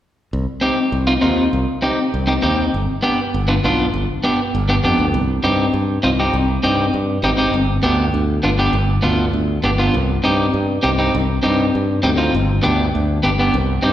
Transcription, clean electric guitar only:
0.61 0.78 C4 medium
0.61 0.78 D#4 medium
0.61 0.78 G4 medium
1.07 1.13 C4 medium
1.07 1.13 D#4 medium
1.07 1.13 F4 medium
1.21 1.43 C4 medium
1.21 1.43 D#4 medium
1.21 1.44 F4 medium
1.82 1.98 C4 medium
1.82 1.99 D#4 medium
1.82 1.99 G4 medium
2.27 2.33 C4 medium
2.27 2.33 D#4 medium
2.27 2.33 G4 medium
2.42 2.64 C4 medium
2.42 2.64 D#4 medium
2.42 2.64 G4 medium
3.03 3.19 B3 medium
3.03 3.19 D4 medium
3.03 3.19 G4 medium
3.48 3.54 B3 medium
3.48 3.54 D4 medium
3.48 3.54 F4 medium
3.64 3.85 B3 medium
3.64 3.85 D4 medium
3.64 3.86 F4 medium
4.24 4.40 B3 medium
4.24 4.40 D4 medium
4.24 4.40 G4 medium
4.69 4.74 B3 medium
4.69 4.74 D4 medium
4.69 4.75 G4 medium
4.84 5.05 B3 medium
4.84 5.05 D4 medium
4.84 5.05 G4 medium
5.44 5.65 C4 medium
5.44 5.65 D#4 medium
5.44 5.65 G4 medium
6.03 6.09 C4 medium
6.03 6.09 D#4 medium
6.03 6.09 F4 medium
6.20 6.35 C4 medium
6.20 6.35 D#4 medium
6.20 6.35 G4 medium
6.63 6.85 C4 medium
6.63 6.85 D#4 medium
6.63 6.85 G4 medium
7.24 7.29 C4 medium
7.24 7.29 D#4 medium
7.24 7.30 G4 medium
7.37 7.53 C4 medium
7.37 7.54 D#4 medium
7.37 7.54 G4 medium
7.83 8.05 B3 medium
7.83 8.05 D4 medium
7.83 8.05 G4 medium
8.43 8.49 B3 medium
8.43 8.49 D4 medium
8.43 8.50 F4 medium
8.59 8.75 B3 medium
8.59 8.75 D4 medium
8.59 8.75 G4 medium
9.03 9.25 B3 medium
9.03 9.25 D4 medium
9.03 9.25 F4 medium
9.64 9.69 B3 medium
9.64 9.69 D4 medium
9.64 9.70 G4 medium
9.78 9.94 B3 medium
9.78 9.94 D4 medium
9.78 9.94 F4 medium
10.24 10.45 C4 medium
10.24 10.45 D#4 medium
10.24 10.45 G4 medium
10.83 10.89 C4 medium
10.83 10.89 D#4 medium
10.83 10.89 G4 medium
10.98 11.15 C4 medium
10.98 11.15 D#4 medium
10.98 11.15 G4 medium
11.43 11.65 C4 medium
11.43 11.65 D#4 medium
11.43 11.65 G4 medium
12.03 12.09 C4 medium
12.03 12.09 D#4 medium
12.03 12.10 G4 medium
12.17 12.33 C4 medium
12.17 12.34 D#4 medium
12.17 12.34 F4 medium
12.63 12.85 B3 medium
12.63 12.85 D4 medium
12.63 12.85 G4 medium
13.23 13.29 B3 medium
13.23 13.29 D4 medium
13.23 13.30 G4 medium
13.39 13.54 B3 medium
13.39 13.55 D4 medium
13.39 13.55 G4 medium
13.82 13.93 C4 medium
13.82 13.93 D#4 medium
13.82 13.93 G4 medium

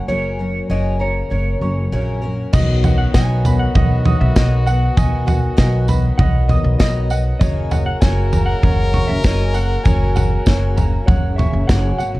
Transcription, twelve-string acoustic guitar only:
0.08 0.39 F#2 medium
0.08 0.39 C#3 medium
0.08 0.39 F#3 medium
0.08 0.39 A#3 medium
0.08 0.39 C#4 medium
0.08 0.38 A#4 medium
0.39 0.69 F#3 soft
0.39 0.69 A#3 soft
0.39 0.70 C#4 soft
0.39 0.70 A#4 soft
0.70 1.00 F#2 medium
0.70 1.00 C#3 medium
0.70 1.00 F#3 medium
0.70 1.00 A#3 medium
0.70 0.99 C#4 medium
0.70 0.98 A#4 medium
0.99 1.29 F#3 soft
0.99 1.30 A#3 soft
0.99 1.30 C#4 soft
0.99 1.30 A#4 soft
1.30 1.61 F#3 soft
1.30 1.61 A#3 soft
1.30 1.61 C#4 soft
1.30 1.60 A#4 medium
1.61 1.91 F#3 soft
1.61 1.92 A#3 soft
1.61 1.92 C#4 soft
1.61 1.92 A#4 soft
1.92 2.23 F#2 medium
1.92 2.23 C#3 medium
1.92 2.23 F#3 medium
1.92 2.22 A#3 medium
1.92 2.21 C#4 medium
1.92 2.20 A#4 medium
2.21 2.52 F#3 soft
2.21 2.53 A#3 soft
2.21 2.53 C#4 soft
2.21 2.53 A#4 soft
2.53 2.83 B2 medium
2.53 2.83 F#3 medium
2.53 2.84 B3 medium
2.53 2.83 D#4 medium
2.53 2.82 F#4 medium
2.83 3.13 B3 soft
2.83 3.14 D#4 medium
2.83 3.14 F#4 medium
3.14 3.44 B2 medium
3.14 3.45 F#3 medium
3.14 3.45 B3 medium
3.14 3.44 D#4 loud
3.14 3.43 F#4 loud
3.45 3.74 B3 soft
3.45 3.74 D#4 soft
3.45 3.75 F#4 medium
3.74 4.05 F#3 medium
3.74 4.06 B3 medium
3.74 4.05 D#4 medium
3.74 4.03 F#4 medium
4.05 4.36 B3 soft
4.05 4.36 D#4 soft
4.05 4.36 F#4 medium
4.36 4.67 B2 medium
4.36 4.67 F#3 medium
4.36 4.67 B3 medium
4.36 4.66 D#4 medium
4.36 4.65 F#4 medium
4.66 4.96 B3 medium
4.66 4.97 D#4 medium
4.66 4.97 F#4 medium
4.97 5.27 B2 medium
4.97 5.28 F#3 medium
4.97 5.27 B3 medium
4.97 5.26 D#4 medium
4.97 5.25 F#4 medium
5.26 5.56 B3 soft
5.26 5.57 D#4 medium
5.26 5.57 F#4 medium
5.57 5.88 B2 medium
5.57 5.88 F#3 medium
5.57 5.88 B3 medium
5.57 5.88 D#4 loud
5.57 5.87 F#4 medium
5.88 6.18 B3 medium
5.88 6.19 D#4 medium
5.88 6.19 F#4 medium
6.18 6.49 F#3 medium
6.18 6.50 B3 medium
6.18 6.49 D#4 medium
6.18 6.48 F#4 medium
6.49 6.79 B3 soft
6.49 6.79 D#4 medium
6.49 6.80 F#4 medium
6.79 7.10 B2 medium
6.79 7.10 F#3 medium
6.79 7.11 B3 medium
6.79 7.10 D#4 loud
6.79 7.09 F#4 medium
7.10 7.41 B3 soft
7.10 7.41 D#4 medium
7.10 7.41 F#4 medium
7.41 7.71 F#2 medium
7.41 7.71 C#3 medium
7.41 7.72 F#3 medium
7.41 7.72 A#3 medium
7.41 7.71 C#4 medium
7.41 7.70 F#4 medium
7.71 8.02 F#3 soft
7.71 8.02 A#3 soft
7.71 8.02 C#4 soft
7.71 8.02 F#4 medium
8.02 8.33 F#2 medium
8.02 8.33 C#3 medium
8.02 8.33 F#3 loud
8.02 8.32 A#3 loud
8.02 8.32 C#4 loud
8.02 8.31 F#4 loud
8.32 8.61 F#3 soft
8.32 8.62 A#3 medium
8.32 8.62 C#4 medium
8.32 8.63 F#4 medium
8.62 8.93 F#3 medium
8.62 8.93 A#3 medium
8.62 8.92 C#4 medium
8.62 8.91 F#4 medium
8.93 9.23 F#3 soft
8.93 9.23 A#3 soft
8.93 9.24 C#4 medium
8.93 9.24 F#4 medium
9.24 9.55 F#2 medium
9.24 9.54 C#3 medium
9.24 9.55 F#3 medium
9.24 9.55 A#3 medium
9.24 9.54 C#4 medium
9.24 9.54 F#4 medium
9.55 9.85 F#3 soft
9.55 9.85 A#3 medium
9.55 9.85 C#4 soft
9.55 9.85 F#4 medium
9.85 10.16 F#2 medium
9.85 10.16 C#3 medium
9.85 10.16 F#3 medium
9.85 10.16 A#3 medium
9.85 10.15 C#4 medium
9.85 10.15 F#4 loud
10.16 10.46 F#3 soft
10.16 10.46 A#3 soft
10.16 10.47 C#4 medium
10.16 10.47 F#4 medium
10.46 10.77 F#2 medium
10.46 10.77 C#3 medium
10.46 10.77 F#3 medium
10.46 10.77 A#3 medium
10.46 10.77 C#4 medium
10.46 10.76 F#4 loud
10.78 11.07 F#3 medium
10.78 11.07 A#3 medium
10.78 11.08 C#4 medium
10.78 11.08 F#4 medium
11.08 11.38 F#3 medium
11.08 11.38 A#3 medium
11.08 11.38 C#4 medium
11.08 11.36 F#4 medium
11.38 11.68 F#3 soft
11.38 11.68 A#3 medium
11.38 11.69 C#4 medium
11.38 11.69 F#4 soft
11.69 11.99 F#2 medium
11.69 11.99 C#3 medium
11.69 12.00 F#3 medium
11.69 12.00 A#3 medium
11.69 11.99 C#4 medium
11.69 11.98 F#4 medium
11.99 12.20 F#3 soft
11.99 12.20 A#3 soft
11.99 12.20 C#4 soft
11.99 12.20 F#4 medium

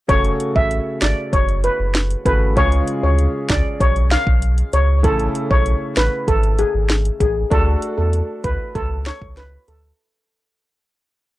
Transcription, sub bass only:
0.09 0.33 F#1 loud
0.56 0.80 A1 medium
1.02 1.14 G#1 medium
1.33 1.69 F#1 loud
1.79 2.15 F#1 medium
2.26 2.58 G#1 medium
2.57 2.81 C#2 loud
3.03 3.27 D2 medium
3.50 3.61 C#2 medium
3.80 4.16 B1 loud
4.27 4.63 B1 medium
4.73 5.06 C#2 loud
5.04 5.28 A1 loud
5.51 5.74 B1 medium
5.97 6.09 A1 loud
6.28 6.64 G#1 loud
6.74 7.10 G#1 medium
7.20 7.44 A1 loud
7.51 7.75 D2 loud
7.98 8.22 E2 medium
8.44 8.56 D2 loud
8.75 9.11 C#2 medium
9.22 9.57 C#2 medium
9.68 9.92 D2 loud

